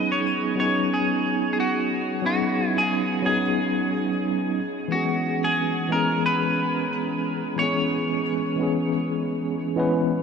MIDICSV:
0, 0, Header, 1, 3, 480
1, 0, Start_track
1, 0, Tempo, 666667
1, 1625, Time_signature, 4, 2, 24, 8
1, 7363, End_track
2, 0, Start_track
2, 0, Title_t, "Clean electric guitar"
2, 0, Program_c, 0, 27
2, 0, Note_on_c, 0, 75, 109
2, 82, Note_off_c, 0, 75, 0
2, 85, Note_on_c, 0, 73, 97
2, 422, Note_off_c, 0, 73, 0
2, 431, Note_on_c, 0, 73, 98
2, 674, Note_on_c, 0, 68, 94
2, 675, Note_off_c, 0, 73, 0
2, 1093, Note_off_c, 0, 68, 0
2, 1102, Note_on_c, 0, 68, 67
2, 1146, Note_off_c, 0, 68, 0
2, 1151, Note_on_c, 0, 66, 92
2, 1619, Note_off_c, 0, 66, 0
2, 1628, Note_on_c, 0, 66, 93
2, 1938, Note_off_c, 0, 66, 0
2, 1938, Note_on_c, 0, 64, 93
2, 2002, Note_on_c, 0, 68, 80
2, 2012, Note_off_c, 0, 64, 0
2, 2339, Note_off_c, 0, 68, 0
2, 2347, Note_on_c, 0, 68, 81
2, 2797, Note_off_c, 0, 68, 0
2, 3543, Note_on_c, 0, 66, 87
2, 3919, Note_on_c, 0, 68, 81
2, 3930, Note_off_c, 0, 66, 0
2, 4262, Note_off_c, 0, 68, 0
2, 4264, Note_on_c, 0, 70, 86
2, 4503, Note_off_c, 0, 70, 0
2, 4506, Note_on_c, 0, 71, 92
2, 5462, Note_off_c, 0, 71, 0
2, 5465, Note_on_c, 0, 73, 109
2, 7116, Note_off_c, 0, 73, 0
2, 7363, End_track
3, 0, Start_track
3, 0, Title_t, "Tine electric piano"
3, 0, Program_c, 1, 4
3, 0, Control_c, 1, 64, 127
3, 0, Note_on_c, 1, 54, 71
3, 0, Note_on_c, 1, 59, 65
3, 0, Note_on_c, 1, 61, 65
3, 0, Note_on_c, 1, 63, 68
3, 0, Note_on_c, 1, 68, 82
3, 387, Note_off_c, 1, 54, 0
3, 392, Note_off_c, 1, 59, 0
3, 398, Note_on_c, 1, 54, 69
3, 399, Note_off_c, 1, 61, 0
3, 404, Note_off_c, 1, 63, 0
3, 411, Note_on_c, 1, 59, 62
3, 412, Note_off_c, 1, 68, 0
3, 425, Note_on_c, 1, 61, 62
3, 436, Note_on_c, 1, 63, 62
3, 448, Note_on_c, 1, 68, 76
3, 1586, Note_off_c, 1, 54, 0
3, 1593, Note_off_c, 1, 59, 0
3, 1599, Note_on_c, 1, 54, 72
3, 1600, Note_off_c, 1, 61, 0
3, 1605, Note_off_c, 1, 63, 0
3, 1611, Note_off_c, 1, 68, 0
3, 1611, Note_on_c, 1, 59, 64
3, 1624, Note_on_c, 1, 61, 62
3, 1636, Note_on_c, 1, 63, 65
3, 1650, Note_on_c, 1, 68, 76
3, 2307, Note_off_c, 1, 54, 0
3, 2313, Note_off_c, 1, 59, 0
3, 2318, Note_on_c, 1, 54, 73
3, 2319, Note_off_c, 1, 61, 0
3, 2325, Note_off_c, 1, 63, 0
3, 2331, Note_on_c, 1, 59, 68
3, 2332, Note_off_c, 1, 68, 0
3, 2341, Note_on_c, 1, 61, 69
3, 2355, Note_on_c, 1, 63, 70
3, 2368, Note_on_c, 1, 68, 80
3, 3279, Note_off_c, 1, 54, 0
3, 3286, Note_off_c, 1, 59, 0
3, 3291, Note_off_c, 1, 61, 0
3, 3298, Note_off_c, 1, 63, 0
3, 3304, Note_off_c, 1, 68, 0
3, 3315, Control_c, 1, 64, 0
3, 3436, Control_c, 1, 64, 127
3, 3514, Note_on_c, 1, 52, 74
3, 3526, Note_on_c, 1, 56, 70
3, 3541, Note_on_c, 1, 59, 65
3, 3554, Note_on_c, 1, 61, 69
3, 3565, Note_on_c, 1, 68, 83
3, 4224, Note_off_c, 1, 52, 0
3, 4230, Note_off_c, 1, 56, 0
3, 4237, Note_on_c, 1, 52, 72
3, 4238, Note_off_c, 1, 59, 0
3, 4245, Note_off_c, 1, 61, 0
3, 4249, Note_on_c, 1, 56, 65
3, 4250, Note_off_c, 1, 68, 0
3, 4262, Note_on_c, 1, 59, 63
3, 4275, Note_on_c, 1, 61, 65
3, 4286, Note_on_c, 1, 68, 76
3, 5426, Note_off_c, 1, 52, 0
3, 5432, Note_off_c, 1, 56, 0
3, 5438, Note_off_c, 1, 59, 0
3, 5442, Note_on_c, 1, 52, 73
3, 5445, Note_off_c, 1, 61, 0
3, 5450, Note_off_c, 1, 68, 0
3, 5456, Note_on_c, 1, 56, 63
3, 5469, Note_on_c, 1, 59, 64
3, 5481, Note_on_c, 1, 61, 65
3, 5493, Note_on_c, 1, 68, 77
3, 6148, Note_off_c, 1, 52, 0
3, 6155, Note_off_c, 1, 56, 0
3, 6161, Note_on_c, 1, 52, 68
3, 6162, Note_off_c, 1, 59, 0
3, 6168, Note_off_c, 1, 61, 0
3, 6173, Note_on_c, 1, 56, 62
3, 6174, Note_off_c, 1, 68, 0
3, 6187, Note_on_c, 1, 59, 63
3, 6198, Note_on_c, 1, 61, 64
3, 6211, Note_on_c, 1, 68, 80
3, 7001, Note_off_c, 1, 52, 0
3, 7006, Note_off_c, 1, 56, 0
3, 7014, Note_off_c, 1, 59, 0
3, 7019, Note_off_c, 1, 61, 0
3, 7026, Note_off_c, 1, 68, 0
3, 7026, Note_on_c, 1, 52, 99
3, 7034, Note_on_c, 1, 56, 90
3, 7040, Note_on_c, 1, 59, 86
3, 7047, Note_on_c, 1, 61, 89
3, 7053, Note_on_c, 1, 71, 105
3, 7353, Note_off_c, 1, 52, 0
3, 7357, Note_off_c, 1, 56, 0
3, 7360, Note_off_c, 1, 59, 0
3, 7363, Note_off_c, 1, 61, 0
3, 7363, Note_off_c, 1, 71, 0
3, 7363, End_track
0, 0, End_of_file